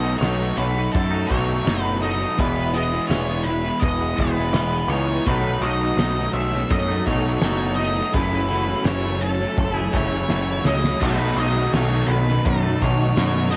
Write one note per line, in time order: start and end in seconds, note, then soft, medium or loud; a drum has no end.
0.00 0.15 B1 medium
0.00 0.19 B2 medium
0.00 0.20 B2 medium
0.00 0.20 F#3 medium
0.00 0.57 F#3 medium
0.00 0.23 A3 medium
0.00 0.24 D#4 medium
0.00 1.65 D#4 medium
0.00 0.18 D#5 medium
0.04 0.21 A3 medium
0.04 0.22 D#4 medium
0.04 0.22 F#4 medium
0.18 0.51 B1 medium
0.18 0.76 B2 medium
0.18 0.55 F#3 medium
0.18 1.30 A3 medium
0.18 0.57 C#5 medium
0.18 tambourine loud
0.23 0.39 A3 medium
0.23 0.40 D#4 medium
0.23 0.37 F#4 medium
0.23 snare loud
0.23 open hi-hat medium
0.39 0.56 F#3 medium
0.39 0.56 A3 medium
0.39 0.58 D#4 medium
0.39 0.57 F#4 medium
0.39 tambourine soft
0.56 0.87 B1 medium
0.56 1.11 F#3 medium
0.56 0.94 F#3 medium
0.56 0.76 A3 medium
0.56 0.75 D#4 medium
0.56 0.73 F#4 medium
0.56 0.92 B4 medium
0.56 muted clean electric guitar stroke soft
0.56 tambourine medium
0.74 1.30 A3 medium
0.74 1.31 D#4 medium
0.74 1.32 F#4 medium
0.93 1.24 F#2 medium
0.93 2.38 F#3 medium
0.93 1.31 A4 medium
0.93 kick loud
0.93 open hi-hat medium
0.93 tambourine medium
1.11 1.30 F#3 medium
1.11 1.30 A3 medium
1.11 1.33 D#4 medium
1.27 1.60 B1 medium
1.27 1.65 B2 medium
1.27 1.65 F#3 medium
1.27 2.02 A3 medium
1.27 1.83 C#5 loud
1.27 kick medium
1.27 tambourine medium
1.31 1.49 A3 medium
1.31 1.49 D#4 medium
1.31 1.47 F#4 medium
1.48 1.66 A3 medium
1.48 1.67 D#4 medium
1.48 1.67 F#4 medium
1.65 2.25 F#1 medium
1.65 2.36 B2 medium
1.65 2.01 F#3 medium
1.65 2.02 A3 medium
1.65 2.42 D#4 medium
1.65 2.03 D#4 medium
1.65 2.03 F#4 loud
1.65 snare loud
1.65 open hi-hat medium
1.65 tambourine medium
1.83 2.02 F#3 medium
1.83 2.03 A3 medium
1.83 2.05 D#4 medium
1.83 2.02 B4 loud
2.02 2.36 B2 medium
2.02 2.36 F#3 medium
2.02 2.39 A3 medium
2.02 2.21 A3 medium
2.02 2.21 D#4 medium
2.02 2.17 F#4 medium
2.02 2.39 D#5 medium
2.02 tambourine medium
2.18 2.37 A3 medium
2.18 2.39 D#4 medium
2.18 2.35 F#4 medium
2.24 2.38 F#3 soft
2.36 2.98 E1 medium
2.36 2.73 E3 medium
2.36 3.44 E3 medium
2.36 2.74 G#3 medium
2.36 2.76 B3 loud
2.36 2.76 E4 loud
2.36 2.76 B4 loud
2.36 kick loud
2.36 open hi-hat medium
2.36 tambourine soft
2.57 2.73 G#3 medium
2.57 2.75 B3 medium
2.74 3.09 E3 medium
2.74 2.94 G#3 medium
2.74 2.93 B3 medium
2.74 2.92 E4 medium
2.74 4.52 G#4 medium
2.74 3.07 D#5 medium
2.74 tambourine soft
2.93 3.10 G#3 medium
2.93 3.12 B3 medium
2.93 3.12 E4 medium
3.07 3.69 E1 medium
3.07 3.45 E3 medium
3.07 3.30 G#3 medium
3.07 3.46 C#5 medium
3.07 snare loud
3.07 open hi-hat medium
3.07 tambourine medium
3.13 3.30 B3 loud
3.13 3.28 E4 loud
3.29 3.47 G#3 medium
3.29 3.49 B3 medium
3.29 3.48 E4 medium
3.29 tambourine soft
3.44 5.25 E3 medium
3.44 4.00 E3 medium
3.44 3.82 B4 medium
3.44 tambourine medium
3.48 3.66 G#3 medium
3.48 3.65 B3 medium
3.48 3.63 E4 medium
3.65 4.19 G#3 medium
3.65 4.20 B3 medium
3.65 4.21 E4 medium
3.80 4.12 E1 loud
3.80 5.26 B3 medium
3.80 4.18 D#5 medium
3.80 kick loud
3.80 open hi-hat medium
3.80 tambourine medium
4.01 4.17 G#3 medium
4.01 4.18 B3 medium
4.17 4.48 E1 medium
4.17 4.54 E3 medium
4.17 4.39 G#3 medium
4.17 4.92 B4 loud
4.17 kick medium
4.17 tambourine medium
4.21 4.38 B3 medium
4.21 4.36 E4 medium
4.38 4.55 G#3 medium
4.38 4.56 B3 medium
4.38 4.57 E4 medium
4.52 4.83 E1 loud
4.52 4.89 E3 medium
4.52 5.26 G#4 medium
4.52 snare loud
4.52 open hi-hat medium
4.52 tambourine loud
4.57 4.91 G#3 medium
4.57 4.92 B3 medium
4.57 4.93 E4 medium
4.73 4.89 G#3 medium
4.73 4.90 B3 medium
4.88 5.18 C#2 medium
4.88 5.24 E3 medium
4.88 5.10 G#3 medium
4.88 5.27 C#5 medium
4.88 tambourine medium
4.92 5.09 B3 medium
4.92 5.06 D#4 medium
4.92 5.08 E4 medium
5.07 5.25 B3 medium
5.07 5.23 D#4 medium
5.07 5.24 E4 medium
5.11 5.26 G#3 medium
5.25 5.56 B1 medium
5.25 5.61 B2 medium
5.25 6.32 F#3 medium
5.25 5.63 F#3 medium
5.25 5.64 A3 medium
5.25 5.64 B4 loud
5.25 kick loud
5.25 open hi-hat medium
5.25 tambourine soft
5.29 5.64 D#4 medium
5.44 5.62 F#3 medium
5.44 5.63 A3 medium
5.44 5.63 D#4 medium
5.61 5.91 B1 medium
5.61 5.98 B2 medium
5.61 5.84 F#3 medium
5.61 5.82 A3 medium
5.61 5.80 D#4 medium
5.61 7.41 F#4 medium
5.61 6.33 D#5 medium
5.61 tambourine soft
5.81 6.00 F#3 medium
5.81 6.01 A3 medium
5.81 6.01 D#4 medium
5.97 6.27 B1 medium
5.97 6.34 B2 medium
5.97 6.21 F#3 loud
5.97 snare loud
5.97 open hi-hat medium
5.97 tambourine loud
6.02 6.20 A3 medium
6.02 6.17 D#4 loud
6.16 6.37 D#4 medium
6.16 tambourine soft
6.20 6.36 F#3 medium
6.20 6.37 A3 medium
6.33 6.63 B1 medium
6.33 6.89 B2 medium
6.33 8.14 F#3 medium
6.33 6.55 F#3 medium
6.33 6.70 E5 loud
6.33 muted clean electric guitar stroke soft
6.33 tambourine medium
6.38 6.54 A3 medium
6.38 6.52 D#4 medium
6.53 7.07 F#3 medium
6.53 7.08 A3 medium
6.53 7.08 D#4 medium
6.53 snare soft
6.70 7.00 F#2 medium
6.70 9.56 A3 medium
6.70 7.05 D#5 loud
6.70 kick loud
6.70 open hi-hat medium
6.70 tambourine medium
6.88 7.07 F#3 medium
6.88 7.08 A3 medium
6.88 7.08 D#4 medium
7.05 7.36 B1 medium
7.05 7.41 B2 medium
7.05 7.27 F#3 medium
7.05 7.26 A3 medium
7.05 7.77 D#4 medium
7.05 7.75 C#5 loud
7.05 kick medium
7.05 tambourine medium
7.09 7.23 D#4 medium
7.24 7.43 F#3 medium
7.24 7.44 A3 medium
7.24 7.44 D#4 medium
7.41 8.01 F#1 medium
7.41 7.78 B2 medium
7.41 7.80 F#3 medium
7.41 7.80 A3 loud
7.41 8.18 F#4 medium
7.41 snare loud
7.41 open hi-hat medium
7.41 tambourine loud
7.45 7.81 D#4 medium
7.59 7.79 F#3 medium
7.59 7.79 A3 medium
7.59 7.80 D#4 medium
7.75 8.12 B2 medium
7.75 8.14 D#4 medium
7.75 8.14 D#5 medium
7.75 tambourine medium
7.80 8.00 F#3 medium
7.80 7.98 A3 medium
7.80 7.96 D#4 medium
7.97 8.15 F#3 medium
7.97 8.15 A3 medium
7.97 8.12 D#4 medium
8.13 8.73 F#1 medium
8.13 8.86 F#2 medium
8.13 8.49 C#3 medium
8.13 9.19 E3 medium
8.13 8.33 E3 loud
8.13 8.52 F#3 medium
8.13 8.53 A3 medium
8.13 8.53 C#4 loud
8.13 8.29 E4 loud
8.13 8.88 B4 loud
8.13 kick loud
8.13 open hi-hat medium
8.13 tambourine soft
8.31 8.48 E3 medium
8.31 8.50 A3 medium
8.31 8.50 E4 medium
8.31 tambourine soft
8.49 8.87 C#3 medium
8.49 8.85 E3 medium
8.49 8.70 F#3 medium
8.49 8.86 E4 medium
8.49 10.28 F#4 medium
8.49 tambourine soft
8.53 8.69 A3 medium
8.53 8.66 C#4 medium
8.66 8.89 A3 medium
8.66 8.89 C#4 medium
8.66 tambourine soft
8.71 8.88 F#3 medium
8.85 9.44 F#1 medium
8.85 9.40 F#2 medium
8.85 9.22 C#3 medium
8.85 9.04 E3 loud
8.85 9.91 C#4 medium
8.85 9.01 E4 medium
8.85 9.22 C#5 medium
8.85 snare loud
8.85 open hi-hat medium
8.85 tambourine loud
8.89 9.08 F#3 medium
8.89 9.06 A3 medium
8.89 9.04 C#4 loud
9.02 9.20 E3 medium
9.02 9.24 C#4 medium
9.02 9.21 E4 medium
9.02 tambourine soft
9.07 9.24 F#3 medium
9.07 9.24 A3 medium
9.20 9.76 C#3 medium
9.20 11.00 E3 medium
9.20 9.73 A4 medium
9.20 muted clean electric guitar stroke soft
9.20 tambourine medium
9.24 9.42 F#3 medium
9.24 9.40 A3 medium
9.24 9.39 C#4 medium
9.39 9.94 F#3 medium
9.39 9.95 A3 medium
9.39 9.96 C#4 medium
9.39 tambourine soft
9.57 9.87 F#1 medium
9.57 11.01 A3 medium
9.57 kick loud
9.57 open hi-hat medium
9.57 tambourine medium
9.73 9.93 A3 medium
9.73 9.94 E4 medium
9.73 9.96 G#4 medium
9.73 tambourine soft
9.77 9.91 E3 medium
9.92 10.23 F#1 medium
9.92 10.29 C#3 medium
9.92 10.29 E3 medium
9.92 10.13 F#3 medium
9.92 10.12 A3 medium
9.92 10.63 C#4 medium
9.92 10.31 E4 medium
9.92 10.66 C#5 medium
9.92 kick medium
9.92 tambourine medium
9.97 10.11 C#4 medium
10.11 10.30 F#3 medium
10.11 10.30 A3 medium
10.11 10.31 C#4 medium
10.11 tambourine soft
10.29 10.59 F#1 medium
10.29 11.00 F#2 medium
10.29 10.63 C#3 medium
10.29 10.49 E3 loud
10.29 10.64 F#3 medium
10.29 10.65 A3 medium
10.29 10.66 C#4 medium
10.29 10.45 E4 medium
10.29 11.01 F#4 medium
10.29 snare medium
10.29 tambourine loud
10.46 10.64 E3 medium
10.46 10.66 A3 medium
10.46 10.66 E4 medium
10.46 tambourine soft
10.64 10.94 C#2 medium
10.64 10.99 C#3 medium
10.64 10.85 E3 medium
10.64 10.84 F#3 medium
10.64 10.83 A3 medium
10.64 11.01 C#4 medium
10.64 10.81 C#4 medium
10.64 10.81 E4 medium
10.64 11.03 D#5 medium
10.64 snare medium
10.64 tambourine medium
10.82 10.99 F#3 soft
10.82 11.00 A3 medium
10.82 10.99 C#4 medium
10.82 10.99 E4 medium
10.82 snare medium
10.82 tambourine soft
10.86 11.01 E3 medium
11.00 11.31 B1 medium
11.00 11.36 B2 medium
11.00 13.50 B2 medium
11.00 13.51 D#3 loud
11.00 12.08 F#3 medium
11.00 11.37 F#3 medium
11.00 13.51 F#3 medium
11.00 11.37 A3 medium
11.00 13.54 B3 medium
11.00 11.39 D#4 medium
11.00 13.53 D#4 loud
11.00 13.51 A4 loud
11.00 11.38 B4 loud
11.00 kick loud
11.00 tambourine soft
11.00 crash medium
11.19 11.37 F#3 medium
11.19 11.38 A3 medium
11.19 11.40 D#4 medium
11.36 11.66 B1 medium
11.36 11.74 B2 medium
11.36 11.57 F#3 medium
11.36 11.56 A3 medium
11.36 11.56 D#4 medium
11.36 13.16 F#4 medium
11.36 11.73 D#5 medium
11.36 tambourine soft
11.56 11.75 F#3 medium
11.56 11.75 A3 medium
11.56 11.77 D#4 medium
11.73 12.03 B1 medium
11.73 12.11 B2 medium
11.73 11.94 F#3 medium
11.73 11.93 A3 loud
11.73 12.81 D#4 medium
11.73 12.11 C#5 medium
11.73 snare loud
11.73 open hi-hat medium
11.73 tambourine loud
11.77 11.93 D#4 loud
11.93 12.11 F#3 medium
11.93 12.12 A3 medium
11.93 12.14 D#4 medium
11.93 tambourine soft
12.07 12.38 B1 medium
12.07 13.56 F#3 medium
12.07 12.45 B4 medium
12.12 12.65 B2 medium
12.12 12.31 F#3 medium
12.12 12.29 A3 medium
12.12 12.28 D#4 medium
12.28 12.83 A3 medium
12.28 12.85 D#4 medium
12.28 snare soft
12.32 12.83 F#3 medium
12.45 12.75 F#2 medium
12.45 13.56 A3 medium
12.45 12.83 A4 medium
12.45 kick loud
12.45 open hi-hat medium
12.45 tambourine medium
12.63 12.82 F#3 medium
12.63 12.82 A3 medium
12.63 12.84 D#4 medium
12.82 13.11 B1 loud
12.82 13.17 B2 medium
12.82 13.02 F#3 medium
12.82 13.01 A3 medium
12.82 13.53 D#4 medium
12.82 13.50 C#5 medium
12.82 kick medium
12.82 tambourine medium
12.86 13.01 D#4 medium
13.01 13.18 F#3 medium
13.01 13.19 A3 medium
13.01 13.21 D#4 medium
13.17 13.56 F#2 medium
13.17 13.52 B2 medium
13.17 13.53 F#3 medium
13.17 13.54 A3 medium
13.17 13.56 F#4 medium
13.17 snare loud
13.17 open hi-hat medium
13.17 tambourine medium
13.21 13.55 D#4 loud
13.35 13.53 F#3 medium
13.35 13.54 A3 medium
13.35 13.56 D#4 medium
13.51 13.56 B2 medium
13.51 13.56 D#4 medium
13.51 13.56 A4 medium
13.51 13.56 D#5 medium